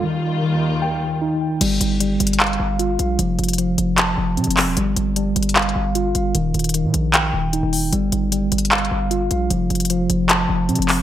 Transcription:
<<
  \new Staff \with { instrumentName = "Tine electric piano" } { \time 4/4 \key g \minor \tempo 4 = 152 ees4 ees4 g''4 ees'4 | g4 g4 f''4 f'4 | f4 f4 a''4 c'4 | g4 g4 f''4 f'4 |
ees4 ees4 g''4 ees'4 | g4 g4 f''4 f'4 | f4 f4 a''4 c'4 | }
  \new Staff \with { instrumentName = "String section" } { \clef bass \time 4/4 \key g \minor <ees, ees g f'>1 | r1 | r1 | r1 |
r1 | r1 | r1 | }
  \new Staff \with { instrumentName = "808-style bass" } { \clef bass \time 4/4 \key g \minor r1 | g,,8 g,,4 g,,4 g,,4 bes,,8 | f,,8 f,,4 f,,4 f,,8 c16 f,,8 ees,,16 | g,,8 g,,4 g,,4 g,,4 g,,8 |
ees,,8 ees,,8. bes,16 bes,,4 ees,,8. ees,,8. | g,,8 g,,4 g,,4 g,,4 bes,,8 | f,,8 f,,4 f,,4 f,,8 c16 f,,8 ees,,16 | }
  \new DrumStaff \with { instrumentName = "Drums" } \drummode { \time 4/4 r4 r4 r4 r4 | <cymc hh>8 hh8 \tuplet 3/2 { hh16 r16 r16 hh16 hh16 hh16 <hc hh>16 hh16 hh16 r16 r16 r16 } hh8 hh8 | hh8 hh32 hh32 hh32 hh32 hh8 hh8 <hc hh>4 \tuplet 3/2 { hh16 hh16 hh16 <hc hho>16 r16 r16 } | hh8 hh8 \tuplet 3/2 { hh16 r16 r16 hh16 hh16 hh16 <hc hh>16 hh16 hh16 r16 r16 r16 } hh8 hh8 |
hh8 hh32 hh32 hh32 hh32 hh8 hh8 <hc hh>4 hh8 hho8 | hh8 hh8 \tuplet 3/2 { hh16 r16 r16 hh16 hh16 hh16 <hc hh>16 hh16 hh16 r16 r16 r16 } hh8 hh8 | hh8 hh32 hh32 hh32 hh32 hh8 hh8 <hc hh>4 \tuplet 3/2 { hh16 hh16 hh16 <hc hho>16 r16 r16 } | }
>>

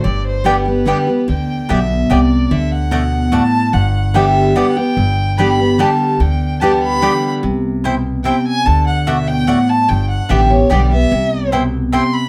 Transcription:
<<
  \new Staff \with { instrumentName = "Fiddle" } { \time 3/4 \key g \major \tempo 4 = 146 d''8 c''8 b'8 b'4. | g''4 e''4 d''4 | e''8 fis''4. a''4 | fis''4 e''4 fis''8 g''8~ |
g''4 b''4 a''4 | g''4 a''8 b''4~ b''16 r16 | r2 g''8 aes''8 | a''8 fis''8 e''8 g''8 fis''8 a''8 |
g''8 fis''8 e''8 cis''8 d''8 e''8~ | e''4 r4 c'''8 b''8 | }
  \new Staff \with { instrumentName = "Mandolin" } { \time 3/4 \key g \major r4 <b g' d'' g''>8 r8 <b g' d'' g''>8 r8 | r4 <b g' d'' g''>8 r8 <b g' d'' g''>8 r8 | r4 <a fis' d'' fis''>8 r8 <a fis' d'' fis''>8 r8 | r4 <b g' d'' g''>8 r8 <b g' d'' g''>8 r8 |
r4 <b g' d'' g''>8 r8 <b g' d'' g''>8 r8 | r4 <b g' d'' g''>8 r8 <b g' d'' g''>8 r8 | r4 <c' e' c'' g''>8 r8 <c' e' c'' g''>8 r8 | r4 <a fis' d'' fis''>8 r8 <a fis' d'' fis''>8 r8 |
r4 <b g' d'' g''>8 r8 <b g' d'' g''>8 r8 | r4 <c' e' c'' g''>8 r8 <c' e' c'' g''>8 r8 | }
  \new Staff \with { instrumentName = "Steel-string acoustic guitar" } { \clef bass \time 3/4 \key g \major << { r4 <d g b g'>8 <b g'>8 <d g b g'>8 <b g'>8 | r2. | r2. | r4 <d g b g'>4 <d g b g'>8 <b g'>8 |
r4 <d g b g'>8 <b g'>8 <d g b g'>4 | r4 <d g b g'>4 <d g b g'>4 | r2. | r2. |
r4 <d g b g'>8 <b g'>8 <d g b g'>8 <b g'>8 | r2. | } \\ { g,2 r4 | d4 b,4 c4 | d4 b,4 a,4 | g,2 r4 |
g,2 r4 | d2 r4 | c4 b,4 c4 | d4 b,4 a,4 |
g,2 r4 | c4 b,4 c4 | } >> }
  \new Staff \with { instrumentName = "Upright bass" } { \clef bass \time 3/4 \key g \major g,,2. | d,4 b,,4 c,4 | d,2. | g,,2. |
g,,2. | d,2. | c,2. | d,2. |
g,,4 a,,4 b,,4 | c,2. | }
>>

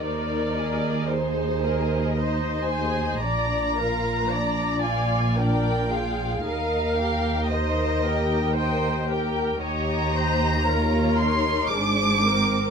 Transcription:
<<
  \new Staff \with { instrumentName = "Violin section" } { \time 3/4 \key ees \major \tempo 4 = 57 d''4 c''4 ees''8 aes''8 | bes''4. aes''8 g''4 | f''4 ees''4 g''8 r8 | bes''4. c'''8 d'''4 | }
  \new Staff \with { instrumentName = "Viola section" } { \time 3/4 \key ees \major bes'4 aes'8 bes'8 c''4 | d''8 bes'8 d''4 bes'8 aes'8 | bes'4 c''8 bes'8 c''8 bes'8 | des''8 c''8 bes'4 aes'8 bes'8 | }
  \new Staff \with { instrumentName = "Violin section" } { \time 3/4 \key ees \major << { c''8 ees''8 c''8 ees''8 c''8 ees''8 | d''8 f''8 d''8 f''8 d''8 f''8 | ees''8 g''8 ees''8 g''8 ees''8 g''8 | ees''4 des''4 c''4 | } \\ { ees'8 aes'8 ees'8 aes'8 ees'8 aes'8 | d'8 f'8 d'8 f'8 d'8 f'8 | bes'8 g'8 bes'8 g'8 bes'8 g'8 | g'4 f'8 ees'8 d'8 c'8 | } >> }
  \new Staff \with { instrumentName = "Cello section" } { \clef bass \time 3/4 \key ees \major ees,2. | bes,2. | ees,2. | ees,2 aes,4 | }
  \new Staff \with { instrumentName = "Double bass section" } { \clef bass \time 3/4 \key ees \major ees,2. | bes,,2. | ees,2. | ees,2 aes,,4 | }
>>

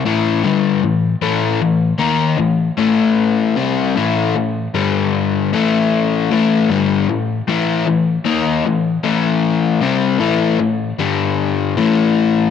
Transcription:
\new Staff \with { instrumentName = "Overdriven electric guitar" } { \clef bass \time 4/4 \key a \minor \tempo 4 = 77 <a, e a>8 <g, d g>8 <a, e>8 <a, e a>8 <a, e>8 <dis bes dis'>8 <a, e>8 <a, e a>8~ | <a, e a>8 <c g c'>8 <a, e a>8 <a, e>8 <g, d g>4 <a, e a>4 | <a, e a>8 <g, d g>8 <a, e>8 <a, e a>8 <a, e>8 <dis bes dis'>8 <a, e>8 <a, e a>8~ | <a, e a>8 <c g c'>8 <a, e a>8 <a, e>8 <g, d g>4 <a, e a>4 | }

